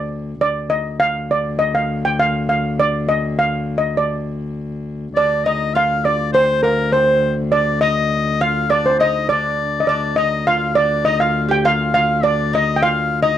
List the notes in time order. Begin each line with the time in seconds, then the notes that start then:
Already playing: D2 D5
0.41 D2 D5
0.70 D#5
1.00 F5
1.31 D5
1.59 D#5
1.75 F5
2.05 G5
2.20 F5
2.49 F5
2.80 D5
3.09 D#5
3.39 F5
3.78 D#5
3.97 D5
5.15 D2 D4 D5
5.44 D#4 D#5
5.74 F4 F5
6.05 D5
6.33 C4 C5
6.63 A#3 A#4
6.92 C4 C5
7.52 D4 D5
7.81 D#4 D#5
8.41 F4 F5
8.70 D4 D5
8.86 C5
8.99 D#4 D#5
9.29 D4 D5
9.80 D#5
9.87 D2 D4 D5
10.16 D#4 D#5
10.47 F4 F5
10.75 D4 D5
11.05 D#4 D#5
11.20 F4 F5
11.48 G4 G5
11.65 F4 F5
11.94 F4 F5
12.23 D4 D5
12.53 D#4 D#5
12.76 G5
12.83 F4 F5
13.22 D#4 D#5